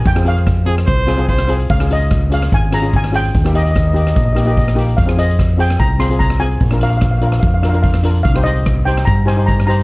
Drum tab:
HH |x-xxx-xxx-xxx-xx|x-xxx-xxx-xxx-xx|x-xxx-xxx-xxx-xx|x-xxx-xxx-xxx-xx|
SD |-r--r--r--r--r--|-r--r--r--r--r--|-r--r--r--r--r--|-r--r--r--r--r--|
BD |o---o---o---o---|o---o---o---o---|o---o---o---o---|o---o---o---o---|

HH |x-xxx-xxx-xxx-xx|x-xxx-xxx-xxx-x-|
SD |-r--r--r--r--r--|-r--r--r--r--r--|
BD |o---o---o---o---|o---o---o---o---|